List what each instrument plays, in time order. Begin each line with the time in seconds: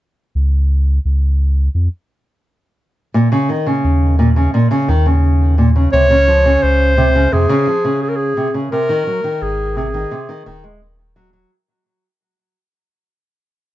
0.35 sub bass C#2
1.05 sub bass C#2
1.74 sub bass F2
3.14 nylon-string guitar A#2
3.32 nylon-string guitar C#3
3.49 nylon-string guitar D#3
3.66 nylon-string guitar C#3
3.84 sub bass D#2
4.19 nylon-string guitar A#2
4.36 nylon-string guitar C#3
4.54 nylon-string guitar A#2
4.71 nylon-string guitar C#3
4.88 sub bass D#2, nylon-string guitar D#3
5.06 nylon-string guitar C#3
5.58 nylon-string guitar A#2
5.76 nylon-string guitar C#3
5.93 sub bass C#2, nylon-string guitar C3, clarinet C#5
6.10 nylon-string guitar C#3
6.27 nylon-string guitar F3
6.45 nylon-string guitar C#3
6.63 sub bass C#2, clarinet C5
6.97 nylon-string guitar C3
7.15 nylon-string guitar C#3
7.32 sub bass F2, nylon-string guitar C3, clarinet G#4
7.49 nylon-string guitar C#3
7.67 nylon-string guitar F3
7.84 nylon-string guitar C#3
8.03 clarinet G#4
8.09 clarinet A#4
8.16 clarinet G#4
8.37 nylon-string guitar C3
8.54 nylon-string guitar C#3
8.72 nylon-string guitar C3, clarinet A#4
8.89 nylon-string guitar D#3
9.07 nylon-string guitar F#3
9.24 nylon-string guitar D#3
9.42 sub bass G#1, clarinet G#4
9.76 nylon-string guitar C3, clarinet G#4
9.94 nylon-string guitar D#3
10.11 nylon-string guitar C3
10.29 nylon-string guitar D#3
10.46 sub bass D#1, nylon-string guitar D#3
10.64 nylon-string guitar G#3
11.16 nylon-string guitar F#3
11.33 nylon-string guitar F#3